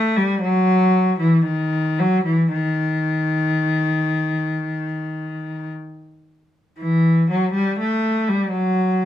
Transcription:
cello
Already playing: A3
0.17 G3
0.41 F#3
1.20 E3
1.44 D#3
1.99 F#3
2.24 E3
2.52 D#3
6.78 E3
7.31 F#3
7.53 G3
7.79 A3
8.28 G3
8.52 F#3

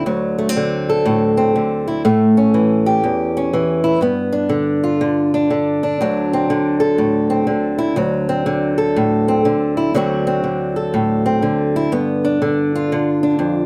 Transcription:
steel-string acoustic guitar
Already playing: D3
0.06 D2 F#3
0.38 A3
0.49 C4
0.57 D3
0.89 A4
1.05 A2
1.37 C4
1.56 D3
1.88 E4
2.05 A2 A3
2.37 C#4
2.54 E3
2.86 G4
3.04 E2
3.37 C#4
3.53 E3
3.84 E4
4.01 G2 B3
4.32 D4
4.49 D3
4.84 F4
5.01 D3
5.34 D4
5.50 D3
5.83 D4
6.01 D2 F#3
6.33 C4
6.50 D3
6.80 A4
6.98 A2
7.30 C4
7.47 D3
7.78 E4
7.96 D2 F#3
8.29 C4
8.46 D3
8.78 A4
8.96 A2
9.28 C4
9.45 D3
9.77 E4
9.94 D2 D3 F#3 C4 F#4
10.27 C4
10.44 D3
10.76 A4
10.94 A2
11.26 C4
11.42 D3
11.76 E4
11.92 G2 B3
12.24 D4
12.42 D3
12.75 F4
12.92 D3
13.23 D4
13.39 F2

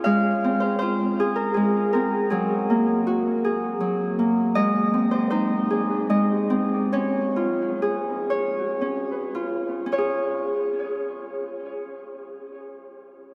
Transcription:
harp
Already playing: C#4 F4 G#4 C#5
0.04 G#3 F5
0.44 C4
0.60 C5
0.79 F4 C5
1.20 G#4
1.36 A#4
1.54 G#3 G#4
1.93 C4 A#4
2.30 F#3 G#4
2.70 A#3
3.07 F#4
3.45 G#4
3.80 F#3
4.19 A#3
4.55 G#3 D#5
4.94 C4
5.11 C5
5.30 D#4 C5
5.70 G#4
6.10 G#3 D#5
6.50 C4
6.93 C#4 C#5
7.36 F4
7.82 G#4
8.30 C#5
8.81 C#4
9.35 F4
9.86 C#4
9.92 F4 C#5
9.98 G#4

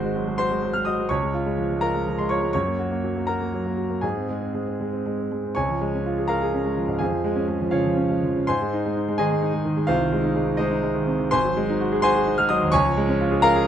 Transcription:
grand piano
Already playing: G#1 G#3 F#4 C5 C6
0.04 G#3
0.16 F#3
0.28 G#3
0.38 F#4 C5 C6
0.51 G#3
0.62 F#3
0.73 G#3 F6
0.85 F#4 D#5 D#6
0.99 G#3
1.09 C#2 C#5 C#6
1.23 G#3
1.34 F4
1.46 G#3
1.58 F3
1.71 G#3
1.81 F4 A#4 A#5
1.95 G#3
2.07 F3
2.18 G#3 C6
2.29 F4 C#5 C#6
2.42 G#3
2.53 F#2 C#5 C#6
2.67 A#3
2.79 F#4
2.91 A#3
3.04 F#3
3.17 A#3
3.27 F#4 A#4 A#5
3.41 A#3
3.53 F#3
3.66 A#3
3.77 F#4
3.90 A#3
4.01 G#2 G#4 G#5
4.17 C4
4.29 G#3
4.42 C4
4.55 G#3
4.67 C4
4.81 G#3
4.93 C4
5.06 G#3
5.18 C4
5.32 G#3
5.45 C4
5.55 C#2 C#5 G#5 C#6
5.69 F3
5.81 G#3
5.94 C#4
6.06 F4
6.18 G#4
6.28 F4 A#4 F5 A#5
6.42 G#4
6.54 C#4
6.65 G#3
6.77 F3
6.88 G#2
6.99 F2 G#4 F5 G#5
7.12 F3
7.24 G#3
7.36 C#4
7.48 G#3
7.61 F3
7.71 C#3 F4 C#5 F5
7.85 F3
7.97 C#4
8.10 G#3
8.24 F3
8.37 C#3
8.47 G#2 C5 G#5 C6
8.62 G#3
8.74 D#4
8.86 G#3
8.96 D#4
9.08 G#3
9.18 D#3 G#4 D#5 G#5
9.31 G#3
9.42 D#4
9.54 G#3
9.65 D#3
9.77 G#3
9.87 C2 F4 C5 F5
10.00 D#3
10.12 G#3
10.24 D#4
10.36 G#3
10.47 D#4
10.57 G#3 D#4 C5 D#5
10.71 D#4
10.83 G#3
10.95 D#3
11.07 C3
11.20 D#3
11.31 G#1 C5 G#5 C6
11.45 F#3
11.57 G#3
11.70 D#4
11.81 F#4
11.92 G#4
12.02 F#4 C5 G#5 C6
12.15 G#4
12.26 D#4
12.38 G#3 F6
12.49 F#3 D#5 D#6
12.61 D#2
12.72 C#2 C#5 G#5 C#6
12.85 F3
12.97 G#3
13.09 C#4
13.21 F4
13.31 G#4
13.42 F4 A#4 F5 A#5
13.56 G#4

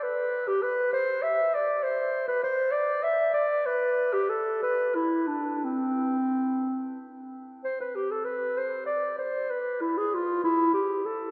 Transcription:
clarinet
0.03 B4
0.47 G4
0.62 B4
0.93 C5
1.22 E5
1.54 D5
1.83 C5
2.27 B4
2.43 C5
2.71 D5
3.03 E5
3.33 D5
3.66 B4
4.13 G4
4.29 A4
4.62 B4
4.95 E4
5.27 D4
5.64 C4
7.64 C5
7.80 B4
7.95 G4
8.11 A4
8.25 B4
8.57 C5
8.86 D5
9.18 C5
9.50 B4
9.81 E4
9.97 G#4
10.14 F4
10.44 E4
10.73 G4
11.05 A4

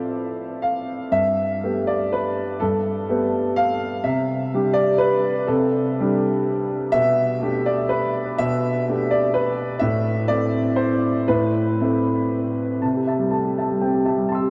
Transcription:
grand piano
Already playing: C4 F4 A4
0.62 F5
1.11 G2 E5
1.63 A3 B3 G4
1.87 D5
2.13 B4
2.60 G2 A4
3.09 A3 B3 G4
3.56 F5
4.04 C3 E5
4.54 G3 D4 G4
4.73 D5
4.98 B4
5.47 C3 A4
6.00 G3 D4 G4
6.92 B2 E5
7.42 A3 D4 G4
7.66 D5
7.89 B4
8.38 B2 E5
8.88 A3 D4 G4
9.11 D5
9.34 B4
9.79 A2 E5
10.28 A3 C4 E4 D5
10.76 C5
11.28 A2 B4
11.81 A3 C4 E4
12.82 C3 A5
12.94 G4
13.07 E5 A5
13.19 G3
13.31 A3 A5
13.44 G4
13.58 E5 A5
13.71 G3
13.81 C4 G5
13.94 G4
14.05 E5 A5
14.17 G3
14.29 A5 C6
14.35 E6
14.40 G4

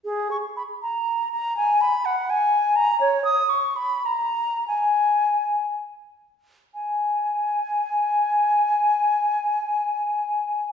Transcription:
flute
0.05 G#4
0.31 C#6
0.57 B5
0.82 A#5
1.32 A#5
1.57 G#5
1.81 B5
2.05 F#5
2.30 G#5
2.76 A#5
3.01 C#5
3.24 D#6
3.49 C#6
3.76 B5
4.05 A#5
4.68 G#5
6.74 G#5

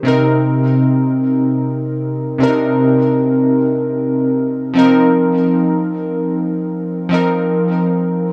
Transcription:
synth keys
0.03 C3 C4 D#4
0.08 A#4
2.38 C3 C4 D4
2.43 A#4
2.48 D#4
4.74 F3 C4 D#4
4.79 A#4
7.09 F3 C4 D#4
7.14 A#4

